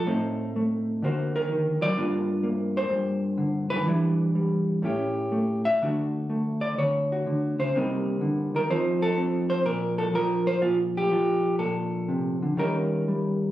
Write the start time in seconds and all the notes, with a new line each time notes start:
Already playing: A4
0.06 A2 A3 C4 D#4
0.56 A3
1.02 D3 A#3 F#4 C5
1.36 A#4
1.49 D#3
1.81 F#3 D5
1.97 G2 A#3 D4 F4
2.43 A#3
2.77 C5
2.89 G2
3.38 D3
3.70 D#3 B4
3.86 E3 G3 D4 E4
4.35 G3
4.82 A2 A3 C#4 E4 G4
5.32 A3
5.65 E5
5.82 D3 A3 D4 F#4
6.30 A3
6.61 D5
6.78 D3 C#5
7.12 F#4
7.27 D3
7.59 C#3 C5
7.75 C3 G3 A#3 D#4
8.21 D3
8.55 D#3 A#4
8.70 F3 C4 D#4 C5
9.02 A4
9.18 C4
9.50 C5
9.65 A#2 A#4
9.98 A4
10.13 F3 A#4
10.47 C5
10.62 A#2 F4
10.97 G4
11.11 F3 F4
11.59 A#2 A4
12.08 C3
12.42 D3
12.57 D#3 G3 C#4 D#4 A#4
13.08 G3